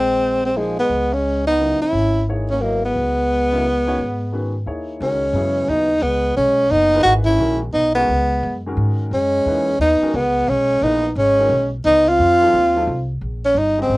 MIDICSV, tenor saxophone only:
0, 0, Header, 1, 2, 480
1, 0, Start_track
1, 0, Tempo, 342466
1, 1266, Time_signature, 3, 2, 24, 8
1, 19585, End_track
2, 0, Start_track
2, 0, Title_t, "Tenor saxophone"
2, 0, Program_c, 0, 66
2, 0, Note_on_c, 0, 60, 87
2, 573, Note_off_c, 0, 60, 0
2, 638, Note_on_c, 0, 60, 74
2, 798, Note_on_c, 0, 56, 74
2, 820, Note_off_c, 0, 60, 0
2, 1103, Note_off_c, 0, 56, 0
2, 1114, Note_on_c, 0, 59, 78
2, 1593, Note_on_c, 0, 61, 80
2, 1614, Note_off_c, 0, 59, 0
2, 2056, Note_off_c, 0, 61, 0
2, 2064, Note_on_c, 0, 63, 85
2, 2507, Note_off_c, 0, 63, 0
2, 2547, Note_on_c, 0, 64, 86
2, 3145, Note_off_c, 0, 64, 0
2, 3503, Note_on_c, 0, 61, 76
2, 3662, Note_on_c, 0, 58, 77
2, 3683, Note_off_c, 0, 61, 0
2, 3975, Note_off_c, 0, 58, 0
2, 3995, Note_on_c, 0, 59, 84
2, 6498, Note_off_c, 0, 59, 0
2, 7046, Note_on_c, 0, 61, 84
2, 7982, Note_on_c, 0, 63, 90
2, 8003, Note_off_c, 0, 61, 0
2, 8441, Note_on_c, 0, 59, 86
2, 8462, Note_off_c, 0, 63, 0
2, 8918, Note_off_c, 0, 59, 0
2, 8926, Note_on_c, 0, 61, 85
2, 9400, Note_on_c, 0, 63, 96
2, 9421, Note_off_c, 0, 61, 0
2, 9807, Note_off_c, 0, 63, 0
2, 9855, Note_on_c, 0, 66, 98
2, 10006, Note_off_c, 0, 66, 0
2, 10168, Note_on_c, 0, 64, 93
2, 10636, Note_off_c, 0, 64, 0
2, 10844, Note_on_c, 0, 63, 91
2, 11134, Note_off_c, 0, 63, 0
2, 11143, Note_on_c, 0, 59, 82
2, 12062, Note_off_c, 0, 59, 0
2, 12807, Note_on_c, 0, 61, 88
2, 13699, Note_off_c, 0, 61, 0
2, 13749, Note_on_c, 0, 63, 89
2, 14229, Note_on_c, 0, 59, 87
2, 14250, Note_off_c, 0, 63, 0
2, 14706, Note_on_c, 0, 61, 91
2, 14727, Note_off_c, 0, 59, 0
2, 15183, Note_on_c, 0, 63, 96
2, 15204, Note_off_c, 0, 61, 0
2, 15579, Note_off_c, 0, 63, 0
2, 15673, Note_on_c, 0, 61, 95
2, 16405, Note_off_c, 0, 61, 0
2, 16616, Note_on_c, 0, 63, 101
2, 16936, Note_on_c, 0, 65, 106
2, 16957, Note_off_c, 0, 63, 0
2, 18377, Note_off_c, 0, 65, 0
2, 18854, Note_on_c, 0, 61, 83
2, 19034, Note_on_c, 0, 63, 80
2, 19055, Note_off_c, 0, 61, 0
2, 19342, Note_off_c, 0, 63, 0
2, 19370, Note_on_c, 0, 60, 75
2, 19585, Note_off_c, 0, 60, 0
2, 19585, End_track
0, 0, End_of_file